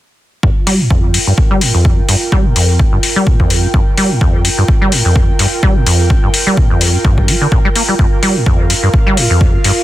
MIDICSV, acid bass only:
0, 0, Header, 1, 2, 480
1, 0, Start_track
1, 0, Key_signature, -2, "minor"
1, 0, Tempo, 472441
1, 440, Time_signature, 4, 2, 24, 8
1, 9993, End_track
2, 0, Start_track
2, 0, Title_t, "Acid bass"
2, 0, Program_c, 0, 38
2, 439, Note_on_c, 0, 43, 84
2, 512, Note_off_c, 0, 43, 0
2, 678, Note_on_c, 0, 55, 100
2, 811, Note_on_c, 0, 45, 73
2, 827, Note_off_c, 0, 55, 0
2, 901, Note_off_c, 0, 45, 0
2, 919, Note_on_c, 0, 41, 82
2, 1159, Note_on_c, 0, 43, 74
2, 1175, Note_off_c, 0, 41, 0
2, 1203, Note_off_c, 0, 43, 0
2, 1293, Note_on_c, 0, 43, 75
2, 1352, Note_off_c, 0, 43, 0
2, 1532, Note_on_c, 0, 55, 101
2, 1640, Note_on_c, 0, 45, 76
2, 1655, Note_off_c, 0, 55, 0
2, 1749, Note_off_c, 0, 45, 0
2, 1772, Note_on_c, 0, 41, 76
2, 2013, Note_on_c, 0, 43, 74
2, 2028, Note_off_c, 0, 41, 0
2, 2048, Note_off_c, 0, 43, 0
2, 2120, Note_on_c, 0, 43, 79
2, 2193, Note_off_c, 0, 43, 0
2, 2360, Note_on_c, 0, 55, 104
2, 2493, Note_on_c, 0, 45, 75
2, 2508, Note_off_c, 0, 55, 0
2, 2581, Note_off_c, 0, 45, 0
2, 2601, Note_on_c, 0, 41, 73
2, 2840, Note_on_c, 0, 43, 83
2, 2855, Note_off_c, 0, 41, 0
2, 2884, Note_off_c, 0, 43, 0
2, 2973, Note_on_c, 0, 43, 75
2, 3032, Note_off_c, 0, 43, 0
2, 3212, Note_on_c, 0, 55, 102
2, 3319, Note_on_c, 0, 45, 82
2, 3335, Note_off_c, 0, 55, 0
2, 3429, Note_off_c, 0, 45, 0
2, 3451, Note_on_c, 0, 41, 73
2, 3691, Note_on_c, 0, 43, 79
2, 3707, Note_off_c, 0, 41, 0
2, 3727, Note_off_c, 0, 43, 0
2, 3799, Note_on_c, 0, 43, 80
2, 3872, Note_off_c, 0, 43, 0
2, 4039, Note_on_c, 0, 55, 102
2, 4171, Note_on_c, 0, 45, 78
2, 4187, Note_off_c, 0, 55, 0
2, 4260, Note_off_c, 0, 45, 0
2, 4279, Note_on_c, 0, 41, 83
2, 4519, Note_on_c, 0, 43, 78
2, 4534, Note_off_c, 0, 41, 0
2, 4563, Note_off_c, 0, 43, 0
2, 4652, Note_on_c, 0, 43, 76
2, 4711, Note_off_c, 0, 43, 0
2, 4892, Note_on_c, 0, 55, 99
2, 4999, Note_on_c, 0, 45, 73
2, 5015, Note_off_c, 0, 55, 0
2, 5109, Note_off_c, 0, 45, 0
2, 5132, Note_on_c, 0, 41, 76
2, 5372, Note_on_c, 0, 43, 73
2, 5387, Note_off_c, 0, 41, 0
2, 5408, Note_off_c, 0, 43, 0
2, 5480, Note_on_c, 0, 43, 77
2, 5553, Note_off_c, 0, 43, 0
2, 5719, Note_on_c, 0, 55, 103
2, 5852, Note_on_c, 0, 45, 77
2, 5867, Note_off_c, 0, 55, 0
2, 5941, Note_off_c, 0, 45, 0
2, 5959, Note_on_c, 0, 41, 76
2, 6198, Note_on_c, 0, 43, 84
2, 6214, Note_off_c, 0, 41, 0
2, 6243, Note_off_c, 0, 43, 0
2, 6332, Note_on_c, 0, 43, 79
2, 6391, Note_off_c, 0, 43, 0
2, 6571, Note_on_c, 0, 55, 101
2, 6678, Note_on_c, 0, 45, 83
2, 6693, Note_off_c, 0, 55, 0
2, 6788, Note_off_c, 0, 45, 0
2, 6811, Note_on_c, 0, 41, 74
2, 7051, Note_on_c, 0, 43, 77
2, 7066, Note_off_c, 0, 41, 0
2, 7087, Note_off_c, 0, 43, 0
2, 7159, Note_on_c, 0, 43, 79
2, 7399, Note_on_c, 0, 55, 99
2, 7414, Note_off_c, 0, 43, 0
2, 7472, Note_off_c, 0, 55, 0
2, 7531, Note_on_c, 0, 50, 79
2, 7591, Note_off_c, 0, 50, 0
2, 7639, Note_on_c, 0, 46, 80
2, 7712, Note_off_c, 0, 46, 0
2, 7771, Note_on_c, 0, 55, 97
2, 7807, Note_off_c, 0, 55, 0
2, 7880, Note_on_c, 0, 58, 75
2, 7953, Note_off_c, 0, 58, 0
2, 8011, Note_on_c, 0, 55, 79
2, 8071, Note_off_c, 0, 55, 0
2, 8119, Note_on_c, 0, 43, 84
2, 8192, Note_off_c, 0, 43, 0
2, 8358, Note_on_c, 0, 55, 96
2, 8491, Note_on_c, 0, 45, 78
2, 8506, Note_off_c, 0, 55, 0
2, 8580, Note_off_c, 0, 45, 0
2, 8599, Note_on_c, 0, 41, 85
2, 8838, Note_on_c, 0, 43, 73
2, 8853, Note_off_c, 0, 41, 0
2, 8883, Note_off_c, 0, 43, 0
2, 8970, Note_on_c, 0, 43, 75
2, 9030, Note_off_c, 0, 43, 0
2, 9210, Note_on_c, 0, 55, 99
2, 9318, Note_on_c, 0, 45, 73
2, 9333, Note_off_c, 0, 55, 0
2, 9428, Note_off_c, 0, 45, 0
2, 9450, Note_on_c, 0, 41, 77
2, 9692, Note_on_c, 0, 43, 77
2, 9707, Note_off_c, 0, 41, 0
2, 9727, Note_off_c, 0, 43, 0
2, 9799, Note_on_c, 0, 43, 78
2, 9872, Note_off_c, 0, 43, 0
2, 9993, End_track
0, 0, End_of_file